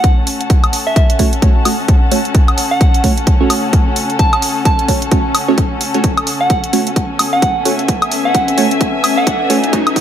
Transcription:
0.00 1.17 A3 medium
0.00 1.17 C#4 medium
0.00 10.01 C#4 medium
0.00 1.17 F#4 medium
0.00 10.01 A4 medium
0.00 1.17 C#5 loud
0.00 7.74 F#5 medium
0.00 7.05 A5 medium
0.00 kick loud
0.00 closed hi-hat medium
0.27 open hi-hat loud
0.41 closed hi-hat soft
0.50 kick loud
0.50 closed hi-hat medium
0.64 closed hi-hat soft
0.64 high woodblock medium
0.73 open hi-hat loud
0.87 0.93 E5 medium
0.96 1.05 E5 medium
0.96 kick loud
0.96 closed hi-hat medium
1.10 closed hi-hat soft
1.19 1.31 A3 medium
1.19 1.31 C#4 medium
1.19 1.31 F#4 medium
1.19 1.31 C#5 loud
1.19 kick medium
1.19 open hi-hat loud
1.33 closed hi-hat soft
1.42 1.63 A3 medium
1.42 1.63 C#4 medium
1.42 1.63 F#4 medium
1.42 1.63 C#5 loud
1.42 kick loud
1.42 closed hi-hat medium
1.65 1.73 A3 medium
1.65 1.73 C#4 medium
1.65 1.73 F#4 medium
1.65 1.73 C#5 loud
1.65 open hi-hat loud
1.65 high woodblock medium
1.88 kick loud
1.88 closed hi-hat medium
2.11 2.19 A3 medium
2.11 2.19 C#4 medium
2.11 2.19 F#4 medium
2.11 2.19 C#5 loud
2.11 open hi-hat loud
2.25 closed hi-hat soft
2.35 kick loud
2.35 closed hi-hat medium
2.48 closed hi-hat soft
2.48 high woodblock medium
2.58 open hi-hat loud
2.71 3.17 F#5 medium
2.81 kick loud
2.81 closed hi-hat medium
2.94 closed hi-hat soft
3.04 3.11 A3 loud
3.04 3.11 C#4 medium
3.04 3.11 F#4 medium
3.04 3.11 C#5 loud
3.04 kick medium
3.04 open hi-hat loud
3.17 closed hi-hat soft
3.27 kick loud
3.27 closed hi-hat medium
3.41 4.86 A3 medium
3.41 4.86 C#4 medium
3.41 4.86 F#4 medium
3.41 4.86 C#5 loud
3.50 open hi-hat loud
3.50 high woodblock medium
3.73 kick loud
3.73 closed hi-hat medium
3.96 open hi-hat loud
4.10 closed hi-hat soft
4.19 4.28 A5 medium
4.19 kick loud
4.19 closed hi-hat medium
4.33 4.39 A5 medium
4.33 closed hi-hat soft
4.33 high woodblock medium
4.42 open hi-hat loud
4.65 5.31 A5 medium
4.65 kick loud
4.65 closed hi-hat medium
4.79 closed hi-hat soft
4.88 5.01 A3 medium
4.88 5.01 C#4 medium
4.88 5.01 F#4 medium
4.88 5.01 C#5 loud
4.88 kick medium
4.88 open hi-hat loud
5.02 closed hi-hat soft
5.11 5.32 A3 medium
5.11 5.32 C#4 medium
5.11 5.32 F#4 medium
5.11 5.32 C#5 medium
5.11 kick loud
5.11 closed hi-hat medium
5.35 open hi-hat loud
5.35 high woodblock medium
5.48 5.54 A3 medium
5.48 5.54 C#4 medium
5.48 5.54 F#4 medium
5.48 5.54 C#5 loud
5.58 kick loud
5.58 closed hi-hat medium
5.81 open hi-hat loud
5.94 6.00 A3 medium
5.94 6.00 C#4 medium
5.94 6.00 F#4 medium
5.94 6.00 C#5 medium
5.94 closed hi-hat soft
6.04 10.01 B4 medium
6.04 kick loud
6.04 closed hi-hat medium
6.04 riser medium
6.17 closed hi-hat soft
6.17 high woodblock medium
6.27 open hi-hat loud
6.41 6.87 F#5 medium
6.50 kick loud
6.50 closed hi-hat medium
6.64 closed hi-hat soft
6.73 6.81 A3 medium
6.73 6.81 C#4 medium
6.73 6.81 F#4 medium
6.73 6.81 C#5 loud
6.73 open hi-hat loud
6.87 closed hi-hat soft
6.91 10.01 G#5 medium
6.96 kick loud
6.96 closed hi-hat medium
7.19 open hi-hat loud
7.19 high woodblock medium
7.33 7.79 F#5 medium
7.42 kick loud
7.42 closed hi-hat medium
7.60 10.01 E5 medium
7.65 7.73 A3 medium
7.65 7.73 C#4 medium
7.65 7.73 F#4 medium
7.65 7.73 C#5 loud
7.65 open hi-hat loud
7.79 closed hi-hat soft
7.88 kick loud
7.88 closed hi-hat medium
8.02 closed hi-hat soft
8.02 high woodblock medium
8.12 open hi-hat loud
8.25 8.71 F#5 medium
8.35 kick loud
8.35 closed hi-hat medium
8.48 closed hi-hat soft
8.58 8.65 A3 medium
8.58 8.65 C#4 medium
8.58 8.65 F#4 medium
8.58 8.65 C#5 loud
8.58 open hi-hat loud
8.71 closed hi-hat soft
8.81 kick loud
8.81 closed hi-hat medium
9.04 open hi-hat loud
9.04 high woodblock medium
9.17 9.64 F#5 medium
9.27 kick loud
9.27 closed hi-hat medium
9.50 9.58 A3 loud
9.50 9.58 C#4 medium
9.50 9.58 F#4 medium
9.50 9.58 C#5 loud
9.50 open hi-hat loud
9.64 closed hi-hat soft
9.73 9.81 A3 medium
9.73 9.81 C#4 medium
9.73 9.81 F#4 medium
9.73 9.81 C#5 loud
9.73 kick loud
9.73 closed hi-hat medium
9.87 closed hi-hat soft
9.87 high woodblock medium
9.96 kick loud
9.96 open hi-hat loud

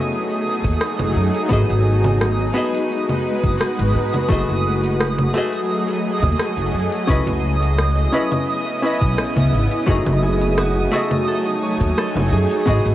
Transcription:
0.00 1.48 F#3 medium
0.00 1.46 A3 medium
0.00 1.48 A3 medium
0.00 4.26 D#4 medium
0.00 1.47 F#4 medium
0.00 1.47 G#4 medium
0.00 1.48 G#4 medium
0.00 0.28 C#5 medium
0.00 1.48 D#5 medium
0.00 12.95 D#6 medium
0.12 shaker soft
0.30 open hi-hat soft
0.30 shaker soft
0.64 0.76 D#2 medium
0.64 kick loud
0.64 open hi-hat soft
0.64 shaker medium
0.81 cross-stick loud
0.81 shaker medium
0.99 1.11 F#1 medium
0.99 open hi-hat soft
0.99 low conga medium
0.99 shaker soft
1.16 1.29 F#2 medium
1.34 open hi-hat medium
1.34 shaker medium
1.49 1.63 G#1 medium
1.49 4.27 G#3 medium
1.49 2.51 B3 medium
1.49 2.51 F#4 medium
1.49 4.27 F#4 medium
1.49 2.52 G#4 medium
1.49 4.27 B4 medium
1.49 2.53 D#5 medium
1.49 kick loud
1.49 shaker medium
1.70 2.48 G#1 medium
1.70 shaker soft
2.04 open hi-hat medium
2.04 low conga medium
2.04 shaker medium
2.21 cross-stick loud
2.21 shaker medium
2.40 shaker soft
2.54 4.25 B3 medium
2.54 4.26 F#4 medium
2.54 4.26 G#4 medium
2.54 4.27 D#5 medium
2.75 open hi-hat medium
2.75 shaker medium
2.92 shaker medium
3.09 open hi-hat soft
3.09 low conga medium
3.09 shaker soft
3.44 3.55 F#1 medium
3.44 kick loud
3.44 open hi-hat medium
3.44 shaker medium
3.61 cross-stick loud
3.61 shaker medium
3.79 3.90 G#1 medium
3.79 open hi-hat soft
3.79 shaker soft
3.95 4.08 G#2 medium
4.14 open hi-hat medium
4.14 low conga medium
4.14 shaker medium
4.29 4.43 F#1 medium
4.29 7.06 F#3 medium
4.29 5.30 A3 medium
4.29 7.07 A3 medium
4.29 5.31 F#4 medium
4.29 7.06 G#4 medium
4.29 5.31 G#4 medium
4.29 9.84 D#5 medium
4.29 5.32 D#5 medium
4.29 kick loud
4.29 shaker medium
4.49 5.27 F#1 medium
4.49 shaker soft
4.84 open hi-hat medium
4.84 shaker medium
5.01 cross-stick loud
5.01 shaker medium
5.18 low conga medium
5.18 shaker soft
5.34 7.05 A3 medium
5.34 7.05 F#4 medium
5.34 7.06 G#4 medium
5.34 7.07 D#5 medium
5.53 open hi-hat soft
5.53 shaker medium
5.70 shaker medium
5.88 open hi-hat soft
5.88 shaker soft
6.23 6.34 D#2 medium
6.23 kick loud
6.23 open hi-hat soft
6.23 low conga medium
6.23 shaker medium
6.39 cross-stick loud
6.39 shaker medium
6.57 6.69 F#1 medium
6.57 open hi-hat soft
6.57 shaker soft
6.74 6.87 F#2 medium
6.92 open hi-hat medium
6.92 shaker medium
7.07 7.22 C#2 medium
7.07 9.85 C#3 medium
7.07 9.85 B3 medium
7.07 8.09 C#4 medium
7.07 9.85 E4 medium
7.07 8.10 E4 medium
7.07 8.10 B4 medium
7.07 8.11 D#5 medium
7.07 kick loud
7.07 shaker medium
7.27 8.05 C#2 medium
7.27 low conga medium
7.27 shaker soft
7.62 open hi-hat soft
7.62 shaker medium
7.78 cross-stick medium
7.78 shaker medium
7.97 open hi-hat soft
7.97 shaker soft
8.12 8.79 C#4 medium
8.12 8.80 E4 medium
8.12 8.80 B4 medium
8.12 8.80 D#5 medium
8.32 open hi-hat soft
8.32 low conga medium
8.32 shaker medium
8.49 shaker medium
8.67 open hi-hat soft
8.67 shaker soft
8.82 9.83 C#4 medium
8.82 9.84 E4 medium
8.82 9.85 B4 medium
8.82 9.85 D#5 loud
9.01 9.13 B1 medium
9.01 kick loud
9.01 open hi-hat soft
9.01 shaker medium
9.18 cross-stick medium
9.18 shaker medium
9.36 9.48 C#2 medium
9.36 open hi-hat soft
9.36 low conga medium
9.36 shaker soft
9.53 9.66 G#1 medium
9.71 open hi-hat soft
9.71 shaker medium
9.86 10.01 F#1 medium
9.86 12.64 F#3 medium
9.86 10.88 A3 medium
9.86 12.64 A3 loud
9.86 12.95 D#4 medium
9.86 12.59 D#4 medium
9.86 10.88 F#4 medium
9.86 10.89 G#4 medium
9.86 10.90 D#5 medium
9.86 12.64 G#5 medium
9.86 kick loud
9.86 shaker medium
10.06 10.84 F#1 medium
10.06 low conga medium
10.06 shaker soft
10.23 10.98 G#4 medium
10.41 open hi-hat soft
10.41 shaker medium
10.58 12.95 F#4 loud
10.58 cross-stick medium
10.58 shaker medium
10.76 shaker soft
10.92 12.63 A3 medium
10.92 12.63 F#4 medium
10.92 11.27 A4 medium
10.92 12.64 D#5 medium
10.92 12.64 G#5 medium
11.11 open hi-hat soft
11.11 low conga medium
11.11 shaker medium
11.28 11.97 A4 medium
11.28 shaker medium
11.46 open hi-hat soft
11.46 shaker soft
11.62 12.95 C#5 medium
11.81 11.92 D#2 medium
11.81 kick loud
11.81 open hi-hat soft
11.81 shaker medium
11.97 12.38 A4 medium
11.97 cross-stick medium
11.97 shaker medium
12.15 12.27 F#1 medium
12.15 open hi-hat soft
12.15 low conga medium
12.15 shaker soft
12.32 12.45 F#2 medium
12.32 12.95 G#4 medium
12.51 open hi-hat soft
12.51 shaker medium
12.66 12.80 G#1 loud
12.66 12.95 B3 medium
12.66 12.95 F#4 medium
12.66 12.95 G#4 medium
12.66 12.95 D#5 medium
12.66 kick loud
12.66 shaker medium
12.86 12.95 G#1 medium
12.86 shaker soft

